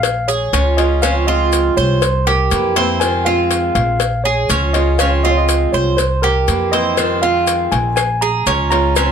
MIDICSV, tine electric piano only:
0, 0, Header, 1, 2, 480
1, 0, Start_track
1, 0, Tempo, 495868
1, 997, Time_signature, 4, 2, 24, 8
1, 8826, End_track
2, 0, Start_track
2, 0, Title_t, "Tine electric piano"
2, 0, Program_c, 0, 4
2, 0, Note_on_c, 0, 77, 106
2, 269, Note_on_c, 0, 73, 98
2, 285, Note_off_c, 0, 77, 0
2, 748, Note_on_c, 0, 75, 94
2, 768, Note_off_c, 0, 73, 0
2, 989, Note_on_c, 0, 77, 106
2, 1000, Note_off_c, 0, 75, 0
2, 1099, Note_off_c, 0, 77, 0
2, 1230, Note_on_c, 0, 75, 94
2, 1679, Note_off_c, 0, 75, 0
2, 1712, Note_on_c, 0, 73, 94
2, 1951, Note_on_c, 0, 72, 89
2, 1962, Note_off_c, 0, 73, 0
2, 2197, Note_on_c, 0, 70, 78
2, 2201, Note_off_c, 0, 72, 0
2, 2643, Note_off_c, 0, 70, 0
2, 2905, Note_on_c, 0, 80, 108
2, 3146, Note_on_c, 0, 77, 97
2, 3158, Note_off_c, 0, 80, 0
2, 3619, Note_off_c, 0, 77, 0
2, 3630, Note_on_c, 0, 77, 96
2, 4080, Note_off_c, 0, 77, 0
2, 4103, Note_on_c, 0, 73, 94
2, 4583, Note_on_c, 0, 75, 93
2, 4604, Note_off_c, 0, 73, 0
2, 4826, Note_on_c, 0, 77, 95
2, 4837, Note_off_c, 0, 75, 0
2, 4936, Note_off_c, 0, 77, 0
2, 5068, Note_on_c, 0, 75, 100
2, 5132, Note_on_c, 0, 73, 80
2, 5142, Note_off_c, 0, 75, 0
2, 5204, Note_on_c, 0, 75, 94
2, 5206, Note_off_c, 0, 73, 0
2, 5541, Note_on_c, 0, 73, 84
2, 5563, Note_off_c, 0, 75, 0
2, 5771, Note_off_c, 0, 73, 0
2, 5778, Note_on_c, 0, 72, 97
2, 6023, Note_on_c, 0, 70, 93
2, 6034, Note_off_c, 0, 72, 0
2, 6502, Note_on_c, 0, 75, 95
2, 6524, Note_off_c, 0, 70, 0
2, 6987, Note_on_c, 0, 77, 102
2, 7003, Note_off_c, 0, 75, 0
2, 7469, Note_on_c, 0, 80, 103
2, 7485, Note_off_c, 0, 77, 0
2, 7695, Note_off_c, 0, 80, 0
2, 7706, Note_on_c, 0, 80, 109
2, 7950, Note_on_c, 0, 82, 106
2, 7958, Note_off_c, 0, 80, 0
2, 8414, Note_off_c, 0, 82, 0
2, 8426, Note_on_c, 0, 82, 108
2, 8826, Note_off_c, 0, 82, 0
2, 8826, End_track
0, 0, End_of_file